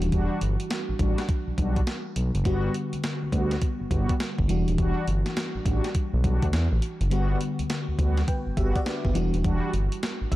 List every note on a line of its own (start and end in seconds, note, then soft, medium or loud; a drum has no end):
0.00 0.10 D#1 medium
0.00 2.12 E3 medium
0.00 2.12 G3 medium
0.00 2.12 D4 medium
0.00 2.13 F#4 medium
0.00 closed hi-hat soft
0.12 0.28 E1 loud
0.12 0.40 G3 medium
0.12 0.40 D4 medium
0.12 0.40 F#4 medium
0.12 kick loud
0.12 closed hi-hat medium
0.41 0.57 G1 loud
0.41 closed hi-hat medium
0.60 closed hi-hat medium
0.70 snare loud
0.70 closed hi-hat medium
0.89 0.93 A1 soft
0.99 1.15 A1 medium
0.99 1.22 G3 medium
0.99 1.22 D4 medium
0.99 1.22 F#4 medium
0.99 kick loud
0.99 closed hi-hat medium
1.18 snare medium
1.18 closed hi-hat medium
1.29 kick loud
1.29 closed hi-hat medium
1.47 1.52 B1 soft
1.58 1.82 B1 medium
1.58 1.80 G3 medium
1.58 1.80 D4 medium
1.58 1.80 F#4 medium
1.58 kick medium
1.58 closed hi-hat medium
1.76 kick medium
1.76 closed hi-hat medium
1.87 snare loud
1.87 closed hi-hat medium
2.16 2.31 B1 medium
2.16 closed hi-hat medium
2.35 2.43 F#1 loud
2.35 closed hi-hat medium
2.44 2.69 G1 loud
2.44 4.45 D3 medium
2.44 4.45 G3 medium
2.44 2.73 G3 medium
2.44 2.73 B3 medium
2.44 4.45 B3 medium
2.44 2.73 F#4 loud
2.44 4.46 F#4 medium
2.44 kick loud
2.44 closed hi-hat medium
2.74 closed hi-hat medium
2.93 2.97 D2 soft
2.93 closed hi-hat medium
3.04 snare loud
3.04 closed hi-hat medium
3.22 3.26 D2 soft
3.32 3.56 D2 loud
3.32 3.55 G3 medium
3.32 3.55 B3 medium
3.32 3.55 F#4 medium
3.32 kick medium
3.32 closed hi-hat medium
3.51 snare medium
3.51 closed hi-hat medium
3.62 kick loud
3.62 closed hi-hat medium
3.80 3.85 G1 soft
3.91 4.06 G1 medium
3.91 4.13 G3 medium
3.91 4.13 B3 medium
3.91 4.13 F#4 medium
3.91 kick medium
3.91 closed hi-hat medium
4.09 kick medium
4.09 closed hi-hat medium
4.20 snare loud
4.20 closed hi-hat medium
4.39 4.47 G1 medium
4.39 kick medium
4.48 4.64 E1 medium
4.48 6.78 E3 medium
4.48 6.78 G3 medium
4.48 6.79 D4 medium
4.48 6.79 F#4 medium
4.48 closed hi-hat medium
4.68 4.76 D#1 medium
4.68 closed hi-hat soft
4.78 4.94 E1 loud
4.78 5.06 G3 medium
4.78 5.06 D4 medium
4.78 5.06 F#4 loud
4.78 kick loud
4.78 closed hi-hat medium
5.08 5.23 G1 loud
5.08 closed hi-hat medium
5.26 snare medium
5.26 closed hi-hat medium
5.37 snare loud
5.37 closed hi-hat medium
5.55 5.59 A1 soft
5.65 5.81 A1 medium
5.65 5.88 G3 medium
5.65 5.88 D4 medium
5.65 5.88 F#4 medium
5.65 kick medium
5.65 closed hi-hat medium
5.84 snare medium
5.84 closed hi-hat medium
5.95 kick loud
5.95 closed hi-hat medium
6.13 6.22 B1 medium
6.24 6.39 B1 medium
6.24 6.46 G3 medium
6.24 6.46 D4 medium
6.24 6.46 F#4 medium
6.24 kick medium
6.24 closed hi-hat medium
6.42 6.51 D2 medium
6.42 kick medium
6.42 closed hi-hat soft
6.53 6.68 E2 loud
6.53 snare loud
6.53 closed hi-hat medium
6.72 6.80 A1 medium
6.82 closed hi-hat medium
7.01 7.09 F#1 medium
7.01 closed hi-hat soft
7.10 7.35 G1 loud
7.10 9.11 D3 medium
7.10 9.11 G3 medium
7.10 7.39 G3 medium
7.10 7.39 B3 medium
7.10 8.26 B3 medium
7.10 7.39 F#4 loud
7.10 8.26 F#4 medium
7.10 closed hi-hat medium
7.41 closed hi-hat medium
7.59 7.63 D2 soft
7.59 closed hi-hat medium
7.70 snare loud
7.70 closed hi-hat medium
7.88 7.93 D2 soft
7.99 8.23 D2 medium
7.99 8.21 G3 medium
7.99 8.21 B3 medium
7.99 8.21 F#4 medium
7.99 kick loud
7.99 closed hi-hat medium
8.17 snare medium
8.17 closed hi-hat medium
8.28 8.56 B4 medium
8.28 8.56 G5 medium
8.28 kick loud
8.28 closed hi-hat medium
8.47 8.51 G1 soft
8.57 8.72 G1 medium
8.57 8.79 G3 medium
8.57 8.79 B3 medium
8.57 8.79 F#4 medium
8.57 8.75 G4 medium
8.57 8.75 E5 medium
8.57 kick medium
8.57 closed hi-hat medium
8.76 8.86 F#4 medium
8.76 8.86 D5 medium
8.76 kick medium
8.76 closed hi-hat medium
8.86 9.04 D4 medium
8.86 9.04 B4 medium
8.86 snare loud
8.86 closed hi-hat medium
9.05 9.13 G1 medium
9.05 9.33 B3 soft
9.05 9.32 G4 medium
9.05 kick medium
9.14 9.31 E1 medium
9.14 10.36 E3 medium
9.14 10.36 G3 medium
9.14 10.36 D4 medium
9.14 10.36 F#4 medium
9.14 closed hi-hat medium
9.34 9.43 D#1 medium
9.34 closed hi-hat soft
9.44 9.60 E1 loud
9.44 9.72 G3 medium
9.44 9.72 D4 medium
9.44 9.72 F#4 loud
9.44 kick loud
9.44 closed hi-hat medium
9.74 9.89 G1 loud
9.74 closed hi-hat medium
9.92 closed hi-hat medium
10.03 snare loud
10.03 closed hi-hat medium
10.21 10.26 A1 soft
10.32 10.36 A1 medium
10.32 10.36 G3 medium
10.32 10.36 D4 medium
10.32 10.36 F#4 medium
10.32 10.36 E5 medium
10.32 kick medium
10.32 closed hi-hat medium